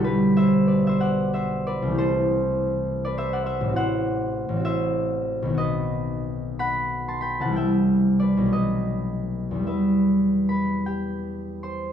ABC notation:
X:1
M:6/8
L:1/16
Q:3/8=62
K:Ador
V:1 name="Harp"
[DGABd]2 [ce]2 [Bd] [ce] [df]2 [ce]2 [Bd]2 | [Ac]6- [Ac] [Bd] [ce] [df] [ce]2 | [K:Em] [cf]6 [ce]6 | [B^d]6 [fb]3 [ac'] [gb] [fa] |
[eg]4 [Bd]2 [B^d]6 | [Be]4 [Bb]2 [Gg]4 [cc']2 |]
V:2 name="Harp" clef=bass
[B,,,D,G,]12 | [C,,E,A,G]12 | [K:Em] [A,,,E,CF]6 [A,,,E,CF]6 | [B,,,^D,B,F]12 |
[C,,E,G,E]6 [B,,,F,A,B,]6 | [E,,E,G,B,]12 |]